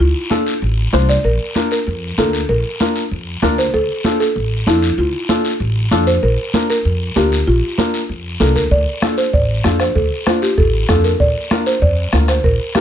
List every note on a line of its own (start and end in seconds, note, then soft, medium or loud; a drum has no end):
0.00 0.12 D2 medium
0.00 0.89 F4 medium
0.30 0.52 D4 medium
0.30 0.53 F4 medium
0.30 0.53 A4 medium
0.30 high conga medium
0.30 short guiro medium
0.47 short guiro medium
0.62 0.87 A1 medium
0.62 high conga soft
0.62 long guiro medium
0.93 1.18 C2 medium
0.93 1.15 D4 medium
0.93 1.15 F4 medium
0.93 1.15 C5 medium
0.93 high conga medium
0.93 short guiro medium
1.09 1.23 D5 medium
1.09 short guiro medium
1.24 1.37 A#1 medium
1.24 1.68 A#4 loud
1.24 high conga soft
1.24 long guiro medium
1.55 1.77 D4 medium
1.55 1.77 F4 medium
1.55 1.78 A#4 medium
1.55 high conga medium
1.55 short guiro medium
1.71 2.15 A#4 medium
1.71 short guiro medium
1.87 2.12 F2 medium
1.87 high conga soft
1.87 long guiro medium
2.18 2.43 D2 medium
2.18 2.40 D4 medium
2.18 2.40 F4 medium
2.18 2.47 A4 medium
2.18 2.40 A#4 medium
2.18 high conga medium
2.18 short guiro medium
2.33 short guiro medium
2.49 2.61 A#1 medium
2.49 3.38 A#4 medium
2.49 high conga soft
2.49 long guiro medium
2.80 3.02 D4 medium
2.80 3.02 F4 medium
2.80 3.02 A#4 medium
2.80 high conga medium
2.80 short guiro medium
2.96 short guiro medium
3.11 3.36 F2 medium
3.11 high conga soft
3.11 long guiro medium
3.42 3.67 D2 medium
3.42 3.64 D4 medium
3.42 3.64 F4 medium
3.42 3.64 A#4 medium
3.42 high conga medium
3.42 short guiro medium
3.58 3.65 C5 medium
3.58 short guiro medium
3.73 3.86 D2 medium
3.73 4.19 A4 loud
3.73 high conga soft
3.73 long guiro medium
4.04 4.26 D4 medium
4.04 4.27 F4 medium
4.04 4.27 A4 medium
4.04 high conga medium
4.04 short guiro medium
4.20 4.68 A4 medium
4.20 short guiro medium
4.35 4.61 A1 medium
4.35 high conga soft
4.35 long guiro medium
4.67 4.92 F2 medium
4.67 4.89 D4 medium
4.67 4.96 E4 medium
4.67 4.89 F4 medium
4.67 4.89 A4 medium
4.67 high conga medium
4.67 short guiro medium
4.82 short guiro medium
4.98 5.10 D2 medium
4.98 5.88 F4 medium
4.98 high conga soft
4.98 long guiro medium
5.29 5.51 D4 medium
5.29 5.51 F4 medium
5.29 5.51 A4 medium
5.29 high conga medium
5.29 short guiro medium
5.45 short guiro medium
5.60 5.85 A1 medium
5.60 high conga soft
5.60 long guiro medium
5.91 6.16 F2 medium
5.91 6.13 D4 medium
5.91 6.13 F4 medium
5.91 6.14 A4 medium
5.91 high conga medium
5.91 short guiro medium
6.07 6.14 C5 medium
6.07 short guiro medium
6.23 6.35 A#1 medium
6.23 6.66 A#4 medium
6.23 high conga soft
6.23 long guiro medium
6.54 6.75 D4 medium
6.54 6.76 F4 medium
6.54 6.76 A#4 medium
6.54 high conga medium
6.54 short guiro medium
6.70 7.18 A#4 medium
6.70 short guiro medium
6.85 7.10 F2 medium
6.85 high conga soft
6.85 long guiro medium
7.16 7.41 D2 medium
7.16 7.38 D4 medium
7.16 7.38 F4 medium
7.16 7.48 G4 medium
7.16 7.38 A#4 medium
7.16 high conga medium
7.16 short guiro medium
7.32 short guiro medium
7.47 7.60 A#1 medium
7.47 8.43 F4 medium
7.47 high conga soft
7.47 long guiro medium
7.78 8.00 D4 medium
7.78 8.00 F4 medium
7.78 8.00 A#4 medium
7.78 high conga medium
7.78 short guiro medium
7.94 short guiro medium
8.09 8.34 F2 medium
8.09 high conga soft
8.09 long guiro medium
8.40 8.54 C2 medium
8.40 8.62 D4 medium
8.40 8.62 F4 medium
8.40 8.55 A4 medium
8.40 8.62 A#4 medium
8.40 high conga medium
8.40 short guiro medium
8.56 8.70 D2 medium
8.56 8.72 A#4 medium
8.56 short guiro medium
8.71 8.84 D2 medium
8.71 9.15 D5 medium
8.71 bombo low medium
8.71 high conga soft
8.71 long guiro medium
9.02 9.24 D4 medium
9.02 9.24 F4 medium
9.02 9.24 A4 medium
9.02 bombo rim medium
9.02 high conga medium
9.02 short guiro medium
9.18 9.32 C5 medium
9.18 short guiro medium
9.33 9.58 A1 medium
9.33 9.77 D5 medium
9.33 bombo low medium
9.33 high conga soft
9.33 long guiro medium
9.64 9.89 F2 medium
9.64 9.86 D4 medium
9.64 9.86 F4 medium
9.64 9.86 A4 medium
9.64 bombo rim medium
9.64 high conga medium
9.64 short guiro medium
9.80 9.96 C5 medium
9.80 bombo rim medium
9.80 short guiro medium
9.95 10.08 D2 medium
9.95 10.24 A4 medium
9.95 bombo low medium
9.95 high conga soft
9.95 long guiro medium
10.26 10.48 D4 medium
10.26 10.48 F4 medium
10.26 10.43 F4 medium
10.26 10.49 C5 medium
10.26 bombo rim medium
10.26 high conga medium
10.26 short guiro medium
10.42 10.57 G4 medium
10.42 short guiro medium
10.58 10.83 A1 medium
10.58 10.87 A4 medium
10.58 bombo low medium
10.58 high conga soft
10.58 long guiro medium
10.89 11.14 F2 loud
10.89 11.10 D4 medium
10.89 11.11 F4 medium
10.89 10.96 A4 medium
10.89 11.11 A4 medium
10.89 bombo low medium
10.89 bombo rim medium
10.89 high conga medium
10.89 short guiro medium
11.04 11.11 A#4 medium
11.04 short guiro medium
11.20 11.32 A#1 medium
11.20 11.63 D5 medium
11.20 bombo low medium
11.20 high conga soft
11.20 long guiro medium
11.51 11.73 D4 medium
11.51 11.73 F4 medium
11.51 11.73 A#4 medium
11.51 bombo rim medium
11.51 high conga medium
11.51 short guiro medium
11.66 11.74 C5 medium
11.66 short guiro medium
11.82 12.07 F2 medium
11.82 12.30 D5 medium
11.82 bombo low medium
11.82 high conga soft
11.82 long guiro medium
12.13 12.38 D2 medium
12.13 12.35 D4 medium
12.13 12.35 F4 medium
12.13 12.35 A#4 medium
12.13 bombo rim medium
12.13 high conga medium
12.13 short guiro medium
12.28 12.36 C5 medium
12.28 bombo rim medium
12.28 short guiro medium
12.44 12.56 A#1 medium
12.44 12.73 A#4 loud
12.44 bombo low medium
12.44 high conga soft
12.44 long guiro medium
12.75 12.81 D4 medium
12.75 12.81 F4 medium
12.75 12.81 G4 medium
12.75 12.81 A#4 medium
12.75 bombo rim medium
12.75 high conga medium
12.75 short guiro medium